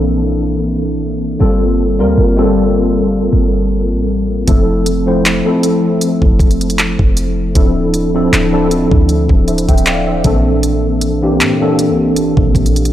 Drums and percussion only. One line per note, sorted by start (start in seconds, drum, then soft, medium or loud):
4.48 kick loud
4.48 closed hi-hat medium
4.86 closed hi-hat medium
5.26 clap loud
5.26 closed hi-hat medium
5.63 closed hi-hat medium
6.01 closed hi-hat medium
6.22 kick medium
6.39 kick medium
6.39 closed hi-hat soft
6.51 closed hi-hat soft
6.61 closed hi-hat soft
6.70 closed hi-hat medium
6.79 clap loud
6.79 closed hi-hat medium
6.99 kick medium
7.17 closed hi-hat medium
7.55 kick loud
7.55 closed hi-hat medium
7.94 closed hi-hat medium
8.33 clap loud
8.33 closed hi-hat medium
8.71 closed hi-hat medium
8.91 kick medium
9.09 closed hi-hat medium
9.29 kick medium
9.48 closed hi-hat medium
9.58 closed hi-hat soft
9.69 kick medium
9.69 closed hi-hat soft
9.78 closed hi-hat soft
9.86 clap loud
9.86 closed hi-hat medium
10.24 kick loud
10.24 closed hi-hat medium
10.63 closed hi-hat medium
11.01 closed hi-hat medium
11.41 clap loud
11.41 closed hi-hat medium
11.79 closed hi-hat medium
12.16 closed hi-hat medium
12.37 kick medium
12.55 kick medium
12.55 closed hi-hat soft
12.66 closed hi-hat soft
12.76 closed hi-hat soft
12.85 closed hi-hat soft